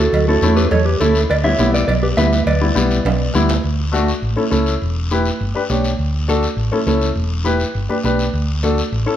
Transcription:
0.00 0.26 F#4 medium
0.00 0.27 A4 medium
0.13 0.36 D2 medium
0.13 cowbell loud
0.13 high conga soft
0.13 low conga medium
0.13 long guiro medium
0.28 0.33 A3 medium
0.28 0.33 C#4 medium
0.28 0.33 E4 medium
0.28 0.55 F#4 medium
0.28 0.55 A4 medium
0.42 0.65 E2 loud
0.42 0.63 A3 medium
0.42 0.63 C#4 medium
0.42 0.63 E4 medium
0.42 high conga medium
0.42 short guiro medium
0.56 0.70 G4 medium
0.56 0.71 B4 medium
0.56 short guiro medium
0.71 0.95 E2 loud
0.71 0.85 A4 medium
0.71 0.86 C#5 loud
0.71 cowbell medium
0.71 high conga soft
0.71 low conga medium
0.71 long guiro medium
0.85 0.99 G4 medium
0.85 1.00 B4 medium
1.00 1.24 D2 medium
1.00 1.16 A3 medium
1.00 1.16 C#4 medium
1.00 1.21 E4 medium
1.00 1.16 E4 medium
1.00 1.21 A4 medium
1.00 high conga medium
1.00 short guiro medium
1.15 short guiro medium
1.30 1.53 D2 loud
1.30 1.35 B4 medium
1.30 1.35 D5 loud
1.30 cowbell loud
1.30 high conga soft
1.30 long guiro medium
1.44 1.49 G3 medium
1.44 1.49 B3 medium
1.44 1.49 E4 medium
1.44 1.71 C#5 medium
1.44 1.71 E5 loud
1.58 1.82 B1 medium
1.58 1.80 G3 medium
1.58 1.80 B3 medium
1.58 1.80 E4 medium
1.58 high conga medium
1.58 short guiro medium
1.74 1.86 B4 medium
1.74 1.86 D5 medium
1.74 short guiro medium
1.87 2.11 B1 loud
1.87 1.93 B4 medium
1.87 1.92 D5 loud
1.87 cowbell medium
1.87 high conga soft
1.87 low conga medium
1.87 long guiro medium
2.03 2.08 G4 medium
2.03 2.08 B4 medium
2.17 2.41 D2 medium
2.17 2.33 G3 medium
2.17 2.33 B3 medium
2.17 2.33 E4 medium
2.17 2.45 B4 medium
2.17 2.47 E5 medium
2.17 high conga medium
2.17 low timbale medium
2.17 short guiro medium
2.33 short guiro medium
2.46 2.70 D2 loud
2.46 3.31 B4 medium
2.46 3.31 D5 medium
2.46 cowbell medium
2.46 high conga soft
2.46 low conga medium
2.46 long guiro medium
2.61 2.66 G3 medium
2.61 2.66 B3 medium
2.61 2.67 E4 medium
2.75 2.99 B1 medium
2.75 2.96 G3 medium
2.75 2.96 B3 medium
2.75 2.96 E4 medium
2.75 high conga medium
2.75 short guiro medium
2.91 short guiro medium
3.05 3.29 B1 loud
3.05 cowbell medium
3.05 high conga soft
3.05 low conga medium
3.05 high timbale loud
3.05 long guiro medium
3.34 3.58 D2 medium
3.34 3.50 G3 medium
3.34 3.50 B3 medium
3.34 3.50 E4 medium
3.34 high conga medium
3.34 short guiro medium
3.49 low timbale medium
3.49 short guiro medium
3.64 4.11 D2 medium
3.64 long guiro medium
3.92 4.08 A3 medium
3.92 4.08 D4 medium
3.92 4.09 F#4 medium
3.92 high conga medium
3.92 short guiro medium
4.08 short guiro medium
4.22 4.34 A1 medium
4.22 long guiro medium
4.36 4.42 C#4 medium
4.36 4.42 E4 medium
4.36 4.42 A4 medium
4.36 high conga medium
4.51 4.75 C#2 medium
4.51 4.72 C#4 medium
4.51 4.72 E4 medium
4.51 4.72 A4 medium
4.51 high conga medium
4.51 short guiro medium
4.66 short guiro medium
4.82 5.29 E1 medium
4.82 long guiro medium
5.11 5.27 E4 medium
5.11 5.27 G4 medium
5.11 5.27 B4 medium
5.11 high conga medium
5.11 short guiro medium
5.25 short guiro medium
5.40 5.52 G1 medium
5.40 long guiro medium
5.55 5.60 D4 medium
5.55 5.60 G4 medium
5.55 5.61 B4 medium
5.70 5.93 B1 medium
5.70 5.90 D4 medium
5.70 5.90 G4 medium
5.70 5.90 C#5 medium
5.70 high conga medium
5.70 short guiro medium
5.84 short guiro medium
5.99 6.46 D2 medium
5.99 long guiro medium
6.28 6.44 D4 medium
6.28 6.44 F#4 medium
6.28 6.44 A4 medium
6.28 high conga medium
6.28 short guiro medium
6.43 short guiro medium
6.57 6.69 A1 medium
6.57 long guiro medium
6.72 6.77 C#4 medium
6.72 6.78 E4 medium
6.72 6.78 A4 medium
6.72 high conga medium
6.86 7.10 C#2 medium
6.86 7.07 C#4 medium
6.86 7.08 E4 medium
6.86 7.08 A4 medium
6.86 high conga medium
6.86 short guiro medium
7.02 short guiro medium
7.15 7.63 E1 medium
7.15 long guiro medium
7.44 7.61 E4 medium
7.44 7.61 G4 medium
7.44 7.61 B4 medium
7.44 high conga medium
7.44 short guiro medium
7.60 short guiro medium
7.75 7.87 G1 medium
7.75 long guiro medium
7.89 7.95 D4 medium
7.89 7.95 G4 medium
7.89 7.95 B4 medium
7.89 high conga medium
8.04 8.28 B1 medium
8.04 8.25 D4 medium
8.04 8.25 G4 medium
8.04 8.25 B4 medium
8.04 high conga medium
8.04 short guiro medium
8.19 short guiro medium
8.33 8.81 D2 medium
8.33 long guiro medium
8.63 8.79 D4 medium
8.63 8.79 F#4 medium
8.63 8.79 A4 medium
8.63 high conga medium
8.63 short guiro medium
8.78 short guiro medium
8.92 9.04 A1 medium
8.92 long guiro medium
9.06 9.12 C#4 medium
9.06 9.12 E4 medium
9.06 9.12 A4 medium

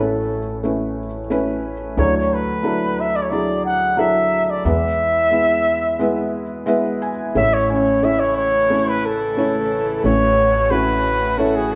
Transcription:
0.00 1.94 A1 medium
0.00 1.95 A1 soft
0.00 1.94 A2 medium
0.00 0.63 A3 medium
0.00 0.64 C#4 medium
0.00 0.65 E4 medium
0.00 0.99 F#4 soft
0.00 0.65 A4 medium
0.00 1.18 A4 soft
0.00 0.65 B4 medium
0.00 0.39 C#5 medium
0.63 1.05 A3 medium
0.63 1.06 C#4 medium
0.63 1.06 E4 medium
0.63 1.06 B4 medium
1.30 1.72 A3 medium
1.30 1.72 C#4 medium
1.30 1.73 E4 medium
1.30 1.73 B4 medium
1.97 4.61 D2 medium
1.97 4.61 D3 medium
1.97 2.39 F#3 medium
1.97 2.39 D4 medium
1.97 2.40 E4 medium
1.97 2.40 A4 medium
1.97 2.14 C#5 medium
2.17 2.35 C#5 medium
2.34 3.02 B4 medium
2.63 3.05 F#3 medium
2.63 3.06 D4 medium
2.63 3.06 E4 medium
2.63 3.06 A4 medium
3.00 3.17 E5 medium
3.16 3.24 D5 medium
3.22 3.32 C#5 medium
3.30 3.73 F#3 medium
3.30 3.73 D4 medium
3.30 3.73 E4 medium
3.30 3.74 G#4 medium
3.30 3.65 D5 medium
3.66 4.01 F#5 medium
3.97 4.39 F#3 medium
3.97 4.40 D4 medium
3.97 4.40 E4 medium
3.97 4.40 A4 medium
3.97 4.46 E5 medium
4.46 4.51 E5 medium
4.50 4.65 D5 medium
4.65 7.31 E2 medium
4.65 7.32 E2 medium
4.65 7.32 E3 medium
4.65 5.07 G#3 medium
4.65 5.07 B3 medium
4.65 5.07 E4 medium
4.65 5.08 B4 medium
4.65 6.64 E5 medium
5.31 5.73 G#3 medium
5.31 5.74 B3 medium
5.31 5.74 E4 medium
5.31 5.74 B4 medium
5.99 6.42 G#3 medium
5.99 6.42 B3 medium
5.99 6.42 E4 medium
5.99 6.42 B4 medium
6.66 7.09 G#3 medium
6.66 7.09 B3 medium
6.66 7.10 E4 medium
6.66 7.10 B4 medium
6.66 6.99 E5 medium
7.02 7.33 G#5 medium
7.35 10.00 A1 medium
7.35 10.01 A1 medium
7.35 10.00 A2 medium
7.35 11.75 C#3 medium
7.35 11.75 E3 medium
7.35 7.77 A3 medium
7.35 11.75 A3 medium
7.35 7.77 C#4 medium
7.35 10.02 E4 medium
7.35 7.78 E4 medium
7.35 7.78 C#5 medium
7.35 7.55 E5 loud
7.53 7.70 C#5 medium
7.70 9.06 C#4 medium
7.70 8.06 C#5 medium
8.03 8.45 A3 medium
8.03 8.45 C#4 medium
8.03 8.45 E4 medium
8.03 8.46 C#5 medium
8.03 8.21 E5 medium
8.19 8.36 C#5 medium
8.38 8.90 C#5 loud
8.70 9.12 A3 medium
8.70 9.12 C#4 medium
8.70 9.12 E4 medium
8.70 9.13 C#5 medium
8.88 9.07 B4 medium
9.05 10.04 A4 medium
9.37 9.79 A3 medium
9.37 9.79 C#4 medium
9.37 9.79 E4 medium
9.37 9.79 C#5 medium
10.03 11.75 A1 medium
10.03 11.75 A2 medium
10.03 10.46 A3 medium
10.03 10.46 C#4 medium
10.03 10.46 E4 medium
10.03 11.75 F#4 medium
10.03 10.72 C#5 medium
10.03 10.47 C#5 medium
10.71 11.12 A3 medium
10.71 11.13 C#4 medium
10.71 11.13 E4 medium
10.71 11.75 F#4 medium
10.71 11.40 B4 medium
10.71 11.14 C#5 medium
11.38 11.75 A3 medium
11.38 11.75 C#4 medium
11.38 11.75 E4 medium
11.38 11.57 A4 medium
11.38 11.75 C#5 medium
11.56 11.74 G#4 medium

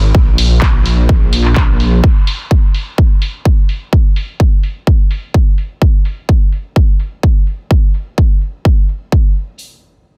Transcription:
0.00 0.12 G#1 medium
0.15 2.01 A#1 medium
0.15 kick loud
0.38 open hi-hat loud
0.62 kick loud
0.62 clap loud
0.86 open hi-hat medium
1.09 kick loud
1.33 open hi-hat loud
1.45 clap soft
1.56 kick loud
1.56 clap loud
1.80 open hi-hat medium
2.04 kick loud
2.27 open hi-hat medium
2.51 kick loud
2.75 open hi-hat medium
2.98 kick loud
3.22 open hi-hat loud
3.45 kick loud
3.69 open hi-hat medium
3.93 kick loud
4.16 open hi-hat medium
4.40 kick loud
4.63 open hi-hat medium
4.87 kick loud
5.11 open hi-hat medium
5.34 kick loud
5.58 open hi-hat medium
5.82 kick loud
6.05 open hi-hat medium
6.29 kick loud
6.52 open hi-hat medium
6.76 kick loud
7.00 open hi-hat medium
7.23 kick loud
7.47 open hi-hat medium
7.71 kick loud
7.94 open hi-hat loud
8.18 kick loud
8.41 open hi-hat medium
8.65 kick loud
8.89 open hi-hat medium
9.12 kick loud
9.36 open hi-hat medium

